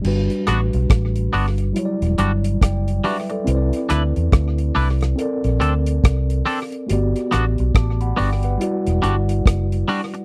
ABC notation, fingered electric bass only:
X:1
M:4/4
L:1/16
Q:"Swing 16ths" 1/4=70
K:G
V:1 name="Fingered electric bass" clef=bass
G,,, z A,,, B,,, A,,,2 G,,,2 z E,,, G,,,2 F,,,2 z2 | C,, z D,, E,, D,,2 C,,2 z _B,,, D,,2 C,,2 z2 | G,,, z A,,, B,,, A,,,2 G,,,2 z E,,, G,,,2 F,,,2 z2 |]